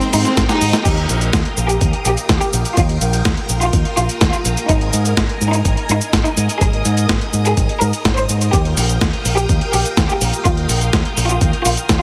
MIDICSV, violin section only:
0, 0, Header, 1, 2, 480
1, 0, Start_track
1, 0, Key_signature, -3, "major"
1, 0, Tempo, 480000
1, 853, Time_signature, 4, 2, 24, 8
1, 12020, End_track
2, 0, Start_track
2, 0, Title_t, "Violin section"
2, 0, Program_c, 0, 48
2, 134, Note_on_c, 0, 60, 83
2, 134, Note_on_c, 0, 63, 93
2, 438, Note_off_c, 0, 60, 0
2, 438, Note_off_c, 0, 63, 0
2, 491, Note_on_c, 0, 63, 81
2, 492, Note_on_c, 0, 67, 96
2, 797, Note_off_c, 0, 63, 0
2, 797, Note_off_c, 0, 67, 0
2, 852, Note_on_c, 0, 67, 93
2, 1157, Note_off_c, 0, 67, 0
2, 1692, Note_on_c, 0, 67, 88
2, 1997, Note_off_c, 0, 67, 0
2, 2052, Note_on_c, 0, 67, 91
2, 2357, Note_off_c, 0, 67, 0
2, 2413, Note_on_c, 0, 67, 92
2, 2718, Note_off_c, 0, 67, 0
2, 2773, Note_on_c, 0, 65, 89
2, 3078, Note_off_c, 0, 65, 0
2, 3613, Note_on_c, 0, 65, 96
2, 3918, Note_off_c, 0, 65, 0
2, 3973, Note_on_c, 0, 65, 89
2, 4278, Note_off_c, 0, 65, 0
2, 4332, Note_on_c, 0, 65, 88
2, 4637, Note_off_c, 0, 65, 0
2, 4692, Note_on_c, 0, 63, 92
2, 4997, Note_off_c, 0, 63, 0
2, 5533, Note_on_c, 0, 63, 96
2, 5838, Note_off_c, 0, 63, 0
2, 5893, Note_on_c, 0, 63, 91
2, 6197, Note_off_c, 0, 63, 0
2, 6251, Note_on_c, 0, 63, 89
2, 6557, Note_off_c, 0, 63, 0
2, 6613, Note_on_c, 0, 68, 90
2, 6917, Note_off_c, 0, 68, 0
2, 7453, Note_on_c, 0, 68, 94
2, 7758, Note_off_c, 0, 68, 0
2, 7813, Note_on_c, 0, 70, 95
2, 8118, Note_off_c, 0, 70, 0
2, 8170, Note_on_c, 0, 72, 95
2, 8476, Note_off_c, 0, 72, 0
2, 8530, Note_on_c, 0, 67, 91
2, 8836, Note_off_c, 0, 67, 0
2, 9372, Note_on_c, 0, 67, 97
2, 9677, Note_off_c, 0, 67, 0
2, 9732, Note_on_c, 0, 67, 92
2, 10037, Note_off_c, 0, 67, 0
2, 10092, Note_on_c, 0, 67, 92
2, 10397, Note_off_c, 0, 67, 0
2, 10452, Note_on_c, 0, 65, 94
2, 10757, Note_off_c, 0, 65, 0
2, 11291, Note_on_c, 0, 65, 91
2, 11597, Note_off_c, 0, 65, 0
2, 11653, Note_on_c, 0, 65, 92
2, 11958, Note_off_c, 0, 65, 0
2, 12020, End_track
0, 0, End_of_file